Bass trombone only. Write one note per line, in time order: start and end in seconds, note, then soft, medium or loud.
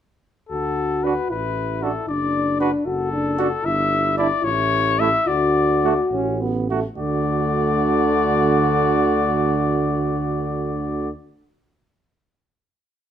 0.51 1.17 D2 soft
1.30 1.95 A1 soft
2.07 2.73 F#1 soft
2.86 3.51 F#1 medium
3.64 4.31 G1 medium
4.44 5.13 A1 medium
5.27 5.98 D2 medium
6.11 6.83 A1 medium
6.99 11.10 D2 medium